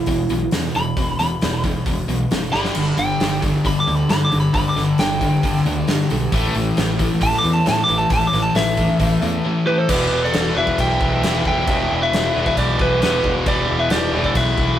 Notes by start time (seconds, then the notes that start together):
Already playing: E4
0.06 E1 E2 B2, kick, open hi-hat
0.29 B1 E2 B2, open hi-hat
0.51 E2 B2, snare, open hi-hat
0.74 E1 E2 B2 B5, open hi-hat
0.96 E1 E2 B2, kick, open hi-hat
1.19 E1 E2 B2 B5, snare, open hi-hat
1.41 E1 E2 B2, snare, open hi-hat
1.64 E2 B2, kick, open hi-hat
1.86 E1 E2 B2, kick, open hi-hat
2.08 B1 E2 B2, open hi-hat
2.31 F#1 E2 B2, snare, open hi-hat
2.52 G1 G2 D3 G3 B5, snare
2.65 snare
2.75 G1 G2 D3 G3, crash
2.97 G1 G2 D3 G5, open hi-hat
3.19 G1 G2 D3, snare, open hi-hat
3.42 G2 D3, kick, open hi-hat
3.64 G1 G2 D3 G3 B5, kick, open hi-hat
3.80 D6
3.87 D2 G2 D3, open hi-hat
3.95 B5
4.09 G2 D3 B5, snare, open hi-hat
4.25 D6
4.32 G1 G2 D3, open hi-hat
4.40 B5
4.53 G1 G2 D3 G3 B5, kick, open hi-hat
4.69 D6
4.76 G1 G2 D3, snare, open hi-hat
4.84 B5
4.98 G1 G2 D3 G5, snare, open hi-hat
5.21 G2 D3, kick, open hi-hat
5.43 G1 G2 D3 G3, kick, open hi-hat
5.56 snare
5.65 D2 G2 D3, open hi-hat
5.87 G2 D3, snare, open hi-hat
6.10 B1 G2 D3, open hi-hat
6.32 A1 A2 E3 A3, kick, open hi-hat
6.54 A1 A2 E3, open hi-hat
6.77 A1 A2 E3, snare, open hi-hat
6.99 A2 E3, kick, open hi-hat
7.21 A1 A2 E3 A3 A5, kick, open hi-hat
7.34 snare
7.38 D6
7.44 E2 A2 E3, open hi-hat
7.53 A5
7.66 A2 E3 A5, snare, open hi-hat
7.84 D6
7.88 A1 A2 E3, open hi-hat
7.98 A5
8.10 A1 A2 E3 A3 A5, kick, open hi-hat
8.27 D6
8.32 A1 A2 E3, snare, open hi-hat
8.43 A5
8.55 A1 A2 E3 E5, snare, open hi-hat
8.77 A2 E3, kick, open hi-hat
9.00 A1 A2 E3 A3, kick, open hi-hat
9.21 E2 A2 E3, open hi-hat
9.45 A2 E3
9.66 A2 E3 G4 B4
9.78 A4 C5
9.89 E1 E2 B2 E3 G4 B4, kick, crash
10.11 E1
10.23 A4 D5, snare
10.33 E1, snare, crash
10.55 E1 E2 B2 E3 B4 E5
10.67 kick
10.78 B1 E5 G5, kick, crash
11.00 B1, kick
11.22 E1 E2 B2 E3, snare, crash
11.45 E1 E5 G5, kick
11.67 E1 E2 B2 E3, kick, crash
11.91 E1
12.02 B4 E5
12.13 E1, snare, crash
12.34 E1 E2 B2 E3
12.46 B4 E5, kick
12.57 B1 G4 D5, kick, crash
12.79 B1 G4 B4, kick
13.00 E1 E2 B2 G4 B4, snare, crash
13.05 E3
13.23 E1, kick
13.46 E1 E2 B2 E3 G4 D5, kick, crash
13.70 E1
13.80 B4 E5
13.90 E1 G4 D5, snare, crash
14.13 E1 E2 B2 E3
14.24 A4 D5, kick
14.35 B1 B4 E5, kick, crash
14.57 B1, kick